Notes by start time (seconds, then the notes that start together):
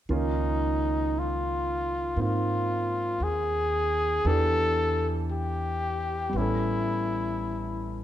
0.09 C#2 D#3 A#3 C#4 F4
0.14 D#4
1.19 F4
2.17 G#2 A#3 C4 D#4
2.22 F4
3.20 D#2 G#4
4.25 E2 E3 B3 D4 G4 A4
5.32 G4
6.29 A1 G3 B3
6.37 C#4 E4 A4